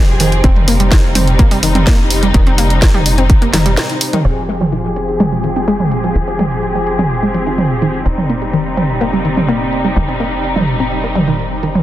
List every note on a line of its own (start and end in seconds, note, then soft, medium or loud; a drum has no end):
0.00 0.42 F1 medium
0.00 0.40 F3 medium
0.00 4.21 C4 medium
0.00 0.40 G4 medium
0.00 0.40 G#4 medium
0.20 0.32 D#3 medium
0.20 open hi-hat loud
0.32 closed hi-hat soft
0.44 2.32 F1 medium
0.44 4.21 C3 medium
0.44 4.21 G3 medium
0.44 0.49 C4 loud
0.44 4.21 D#4 medium
0.44 kick loud
0.44 closed hi-hat soft
0.56 mid tom loud
0.68 0.73 A#3 medium
0.68 open hi-hat loud
0.80 0.88 G3 medium
0.80 closed hi-hat soft
0.92 1.03 D#3 loud
0.92 kick loud
0.92 snare loud
0.92 closed hi-hat soft
1.15 1.27 C4 medium
1.15 mid tom medium
1.15 open hi-hat loud
1.28 closed hi-hat soft
1.39 1.44 A#3 loud
1.39 kick loud
1.39 closed hi-hat soft
1.51 1.56 G3 medium
1.51 open hi-hat medium
1.63 1.68 D#3 medium
1.63 open hi-hat loud
1.75 1.84 C4 medium
1.75 closed hi-hat soft
1.75 mid tom medium
1.87 1.98 A#3 loud
1.87 kick loud
1.87 snare loud
1.87 closed hi-hat soft
2.10 open hi-hat medium
2.23 2.28 G3 medium
2.23 closed hi-hat soft
2.34 3.77 F1 medium
2.34 2.43 D#3 loud
2.34 kick loud
2.34 closed hi-hat soft
2.34 mid tom medium
2.47 2.52 C4 medium
2.47 closed hi-hat soft
2.58 2.64 A#3 medium
2.58 open hi-hat loud
2.70 closed hi-hat soft
2.82 kick loud
2.82 snare loud
2.82 closed hi-hat soft
2.94 3.03 G3 medium
2.94 mid tom medium
3.06 open hi-hat medium
3.18 3.23 C4 medium
3.18 closed hi-hat soft
3.30 kick loud
3.30 closed hi-hat soft
3.42 3.47 A#3 medium
3.42 closed hi-hat soft
3.53 3.62 D#3 medium
3.53 snare medium
3.53 mid tom medium
3.53 open hi-hat medium
3.66 3.74 G3 medium
3.66 closed hi-hat soft
3.77 snare loud
3.77 closed hi-hat soft
3.90 closed hi-hat soft
4.01 open hi-hat loud
4.13 4.24 D#3 medium
4.13 closed hi-hat soft
4.13 mid tom medium
4.25 6.13 F1 medium
4.25 8.02 F3 medium
4.25 11.83 C4 medium
4.25 4.30 C4 medium
4.25 8.02 G4 medium
4.25 8.02 G#4 medium
4.25 closed hi-hat soft
4.49 4.54 G#3 medium
4.49 closed hi-hat medium
4.61 4.69 F3 medium
4.61 closed hi-hat soft
4.61 mid tom medium
4.72 4.84 D#3 medium
4.72 closed hi-hat soft
4.96 5.08 C4 medium
4.96 closed hi-hat medium
5.09 closed hi-hat soft
5.20 5.25 G#3 medium
5.20 closed hi-hat soft
5.20 mid tom medium
5.32 5.37 F3 medium
5.44 5.49 D#3 medium
5.44 closed hi-hat medium
5.56 5.65 C4 medium
5.56 closed hi-hat soft
5.68 5.79 G#3 loud
5.68 closed hi-hat soft
5.80 mid tom medium
5.92 closed hi-hat medium
6.04 6.09 F3 medium
6.04 closed hi-hat soft
6.15 8.04 F1 medium
6.15 6.24 D#3 medium
6.15 closed hi-hat soft
6.28 6.33 C4 medium
6.39 6.44 G#3 medium
6.39 closed hi-hat medium
6.39 mid tom medium
6.51 closed hi-hat soft
6.63 closed hi-hat soft
6.75 6.84 F3 medium
6.87 closed hi-hat medium
6.99 7.04 C4 medium
6.99 closed hi-hat soft
6.99 mid tom medium
7.11 closed hi-hat soft
7.23 7.28 G#3 medium
7.34 7.40 F3 medium
7.34 closed hi-hat medium
7.47 7.58 D#3 medium
7.47 closed hi-hat soft
7.58 closed hi-hat soft
7.58 mid tom medium
7.82 7.94 D#3 medium
7.82 closed hi-hat medium
7.94 closed hi-hat soft
8.06 9.94 F1 medium
8.06 11.83 C3 medium
8.06 11.83 G3 medium
8.06 8.11 C4 medium
8.06 11.83 D#4 medium
8.06 closed hi-hat soft
8.18 mid tom medium
8.30 8.35 A#3 medium
8.30 closed hi-hat medium
8.42 8.50 G3 medium
8.42 closed hi-hat soft
8.53 8.65 D#3 medium
8.53 closed hi-hat soft
8.77 8.89 C4 medium
8.77 closed hi-hat medium
8.77 mid tom medium
8.90 closed hi-hat soft
9.01 9.06 A#3 loud
9.01 closed hi-hat soft
9.13 9.18 G3 medium
9.25 9.30 D#3 medium
9.25 closed hi-hat medium
9.37 9.45 C4 medium
9.37 closed hi-hat soft
9.37 mid tom medium
9.49 9.60 A#3 loud
9.49 closed hi-hat soft
9.73 closed hi-hat medium
9.85 9.90 G3 medium
9.85 closed hi-hat soft
9.96 11.83 F1 medium
9.96 10.05 D#3 loud
9.96 closed hi-hat soft
9.96 mid tom medium
10.08 10.13 C4 medium
10.08 closed hi-hat soft
10.20 10.25 A#3 medium
10.20 closed hi-hat medium
10.33 closed hi-hat soft
10.44 closed hi-hat soft
10.56 10.64 G3 medium
10.56 closed hi-hat soft
10.56 mid tom medium
10.68 closed hi-hat medium
10.80 10.85 C4 medium
10.80 closed hi-hat soft
10.92 closed hi-hat soft
11.04 11.09 A#3 medium
11.04 closed hi-hat soft
11.15 11.21 G3 medium
11.15 closed hi-hat medium
11.15 mid tom medium
11.28 11.39 D#3 medium
11.28 closed hi-hat soft
11.39 closed hi-hat soft
11.63 11.75 D#3 medium
11.63 closed hi-hat medium
11.75 closed hi-hat soft
11.75 mid tom medium